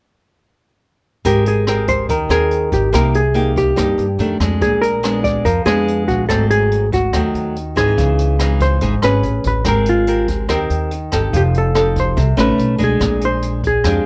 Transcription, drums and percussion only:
1.25 kick, closed hi-hat
1.46 closed hi-hat
1.67 cross-stick, closed hi-hat
1.88 kick, closed hi-hat
2.09 kick, closed hi-hat
2.30 cross-stick, closed hi-hat
2.51 closed hi-hat
2.72 kick, closed hi-hat
2.93 kick, cross-stick, closed hi-hat
3.14 closed hi-hat
3.36 closed hi-hat
3.56 kick, closed hi-hat
3.77 kick, cross-stick, closed hi-hat
3.99 closed hi-hat
4.20 closed hi-hat
4.40 kick, cross-stick, closed hi-hat
4.61 kick, closed hi-hat
4.83 closed hi-hat
5.04 cross-stick, closed hi-hat
5.24 kick, closed hi-hat
5.45 kick, closed hi-hat
5.67 cross-stick, closed hi-hat
5.88 closed hi-hat
6.08 kick, closed hi-hat
6.29 kick, cross-stick, closed hi-hat
6.50 closed hi-hat
6.71 closed hi-hat
6.92 kick, closed hi-hat
7.13 kick, cross-stick, closed hi-hat
7.35 closed hi-hat
7.56 closed hi-hat
7.77 kick, cross-stick, closed hi-hat
7.98 kick, closed hi-hat
8.19 closed hi-hat
8.39 cross-stick, closed hi-hat
8.60 kick, closed hi-hat
8.81 kick, closed hi-hat
9.02 cross-stick, closed hi-hat
9.23 closed hi-hat
9.44 kick, closed hi-hat
9.65 kick, cross-stick, closed hi-hat
9.86 closed hi-hat
10.07 closed hi-hat
10.28 kick, closed hi-hat
10.49 kick, cross-stick, closed hi-hat
10.70 closed hi-hat
10.91 closed hi-hat
11.12 kick, cross-stick, closed hi-hat
11.33 kick, closed hi-hat
11.54 closed hi-hat
11.75 cross-stick, closed hi-hat
11.96 kick, closed hi-hat
12.17 kick, closed hi-hat
12.38 cross-stick, closed hi-hat
12.59 closed hi-hat
12.80 kick, closed hi-hat
13.01 kick, cross-stick, closed hi-hat
13.21 closed hi-hat
13.42 closed hi-hat
13.64 kick, closed hi-hat
13.84 kick, cross-stick, closed hi-hat

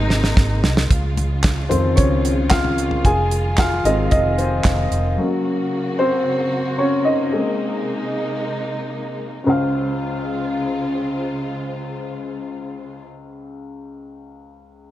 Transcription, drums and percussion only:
0.10 snare
0.24 snare
0.37 kick, snare
0.64 snare
0.77 snare
0.91 kick, closed hi-hat
1.17 closed hi-hat, floor tom
1.43 kick, snare, clap, closed hi-hat
1.71 closed hi-hat, floor tom
1.97 kick, closed hi-hat
2.25 closed hi-hat
2.50 kick, snare, clap, closed hi-hat
2.65 floor tom
2.78 closed hi-hat
2.91 floor tom
3.05 kick, closed hi-hat
3.31 closed hi-hat
3.57 kick, snare, clap, closed hi-hat
3.85 closed hi-hat
4.11 kick, closed hi-hat
4.38 closed hi-hat
4.64 kick, snare, clap, closed hi-hat
4.92 closed hi-hat

